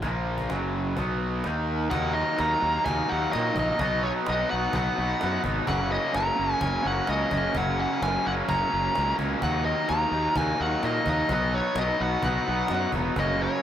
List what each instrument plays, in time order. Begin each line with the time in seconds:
0.02 fingered electric bass A#1, overdriven electric guitar A#2 F3 A#3, cajon bass
0.38 cajon bass
0.49 fingered electric bass F#1, overdriven electric guitar F#2 C#3 F#3, cajon slap
0.96 fingered electric bass B1, overdriven electric guitar B2 F#3 B3, cajon bass
1.44 fingered electric bass D#2, overdriven electric guitar D#3 A#3 D#4, cajon slap
1.89 fingered electric bass D#2, overdriven electric guitar D#3 F#3 A#3, lead electric guitar F#5, cajon bass
1.95 overdriven electric guitar D#4
2.13 overdriven electric guitar A#3 D#4, lead electric guitar D#5
2.17 overdriven electric guitar F#3
2.36 fingered electric bass D#2, overdriven electric guitar D#3 F#3, lead electric guitar A#5, cajon slap
2.40 overdriven electric guitar A#3 D#4
2.61 fingered electric bass D#2, overdriven electric guitar A#3 D#4
2.66 overdriven electric guitar F#3
2.85 fingered electric bass D#2, overdriven electric guitar D#3 F#3 A#3, lead electric guitar G#5, cajon bass
2.90 overdriven electric guitar D#4
3.09 fingered electric bass D#2, overdriven electric guitar F#3 A#3 D#4, lead electric guitar F#5
3.13 overdriven electric guitar D#3
3.32 fingered electric bass A#2, overdriven electric guitar D#3 F#3 A#3, lead electric guitar D#5, cajon slap
3.37 overdriven electric guitar D#4
3.56 fingered electric bass A#1, overdriven electric guitar A#3 D#4, lead electric guitar D#5, cajon bass
3.61 overdriven electric guitar F#3
3.78 fingered electric bass B1, overdriven electric guitar B2 F#3 B3, lead electric guitar D#5, cajon bass
3.83 overdriven electric guitar D#4
4.02 overdriven electric guitar F#3 B3 D#4, lead electric guitar C#5
4.26 fingered electric bass B1, overdriven electric guitar B2 F#3 B3, lead electric guitar D#5, cajon slap
4.32 overdriven electric guitar D#4
4.50 fingered electric bass B1, overdriven electric guitar B3 D#4, lead electric guitar F#5
4.55 overdriven electric guitar F#3
4.73 fingered electric bass B1, overdriven electric guitar B2 F#3 B3, lead electric guitar F#5, cajon bass
4.78 overdriven electric guitar D#4
4.96 fingered electric bass B1, overdriven electric guitar F#3 B3 D#4
5.01 overdriven electric guitar B2
5.19 fingered electric bass F#2, overdriven electric guitar B2 F#3 B3, cajon slap
5.24 overdriven electric guitar D#4
5.43 fingered electric bass G#1, overdriven electric guitar B3 D#4, cajon bass
5.47 overdriven electric guitar F#3
5.65 fingered electric bass F#1, overdriven electric guitar F#2 C#3 F#3 A#3, lead electric guitar F#5, cajon bass
5.70 overdriven electric guitar C#4
5.90 overdriven electric guitar A#3 C#4, lead electric guitar D#5
5.94 overdriven electric guitar F#3
6.13 fingered electric bass F#1, overdriven electric guitar F#2 C#3 F#3 A#3, lead electric guitar A#5, cajon slap
6.18 overdriven electric guitar C#4
6.36 fingered electric bass F#1, overdriven electric guitar A#3 C#4
6.41 overdriven electric guitar F#3
6.59 fingered electric bass F#1, overdriven electric guitar C#3 F#3 A#3, lead electric guitar G#5, cajon bass
6.63 overdriven electric guitar C#4
6.83 fingered electric bass F#1, overdriven electric guitar C#3 F#3 A#3 C#4, lead electric guitar F#5
6.87 overdriven electric guitar F#2
7.06 fingered electric bass C#2, overdriven electric guitar C#3 F#3 A#3, lead electric guitar D#5, cajon slap
7.11 overdriven electric guitar C#4
7.31 fingered electric bass F#1, overdriven electric guitar A#3 C#4, lead electric guitar D#5, cajon bass
7.36 overdriven electric guitar F#3
7.54 fingered electric bass F#1, overdriven electric guitar F#2 C#3 F#3 A#3, lead electric guitar F#5, cajon bass
7.59 overdriven electric guitar C#4
7.76 overdriven electric guitar A#3 C#4
7.80 overdriven electric guitar F#3, lead electric guitar F#5
8.00 fingered electric bass F#1, overdriven electric guitar F#2 C#3 F#3 A#3, lead electric guitar G#5, cajon slap
8.05 overdriven electric guitar C#4
8.23 fingered electric bass F#1, overdriven electric guitar A#3 C#4, lead electric guitar F#5
8.28 overdriven electric guitar F#3
8.46 fingered electric bass F#1, overdriven electric guitar C#3 F#3 A#3, lead electric guitar A#5, cajon bass
8.51 overdriven electric guitar C#4
8.70 fingered electric bass F#1, overdriven electric guitar C#3 F#3 A#3 C#4
8.75 overdriven electric guitar F#2
8.94 fingered electric bass C#2, overdriven electric guitar C#3 F#3 A#3, cajon slap
8.99 overdriven electric guitar C#4
9.18 fingered electric bass C#2, overdriven electric guitar A#3 C#4, cajon bass
9.22 overdriven electric guitar F#3
9.42 fingered electric bass D#2, overdriven electric guitar D#3 F#3 A#3, lead electric guitar F#5, cajon bass
9.47 overdriven electric guitar D#4
9.65 overdriven electric guitar A#3 D#4, lead electric guitar D#5
9.71 overdriven electric guitar F#3
9.89 fingered electric bass D#2, overdriven electric guitar D#3 F#3 A#3, lead electric guitar A#5, cajon slap
9.93 overdriven electric guitar D#4
10.11 fingered electric bass D#2, overdriven electric guitar A#3 D#4
10.18 overdriven electric guitar F#3
10.35 fingered electric bass D#2, overdriven electric guitar D#3 F#3 A#3, lead electric guitar G#5, cajon bass
10.40 overdriven electric guitar D#4
10.58 fingered electric bass D#2, overdriven electric guitar F#3 A#3 D#4, lead electric guitar F#5
10.63 overdriven electric guitar D#3
10.82 fingered electric bass A#2, overdriven electric guitar D#3 F#3 A#3, lead electric guitar D#5, cajon slap
10.87 overdriven electric guitar D#4
11.06 fingered electric bass D#2, overdriven electric guitar A#3 D#4, cajon bass
11.10 overdriven electric guitar F#3, lead electric guitar D#5
11.28 fingered electric bass B1, overdriven electric guitar B2 F#3 B3, cajon bass
11.32 overdriven electric guitar D#4, lead electric guitar D#5
11.53 overdriven electric guitar B3 D#4, lead electric guitar C#5
11.58 overdriven electric guitar F#3
11.75 fingered electric bass B1, overdriven electric guitar B2 F#3 B3, lead electric guitar D#5, cajon slap
11.81 overdriven electric guitar D#4
12.00 fingered electric bass B1, overdriven electric guitar B3 D#4, lead electric guitar F#5
12.05 overdriven electric guitar F#3
12.23 fingered electric bass B1, overdriven electric guitar B2 F#3 B3, lead electric guitar F#5, cajon bass
12.27 overdriven electric guitar D#4
12.46 fingered electric bass B1, overdriven electric guitar F#3 B3 D#4
12.50 overdriven electric guitar B2
12.68 fingered electric bass F#2, overdriven electric guitar B2 F#3 B3, cajon slap
12.74 overdriven electric guitar D#4
12.92 fingered electric bass E1, overdriven electric guitar B3 D#4, cajon bass
12.96 overdriven electric guitar F#3
13.16 fingered electric bass F#1, overdriven electric guitar F#2 C#3 F#3, lead electric guitar D#5, cajon bass
13.20 overdriven electric guitar A#3 C#4
13.38 overdriven electric guitar A#3 C#4, lead electric guitar C#5
13.43 overdriven electric guitar F#3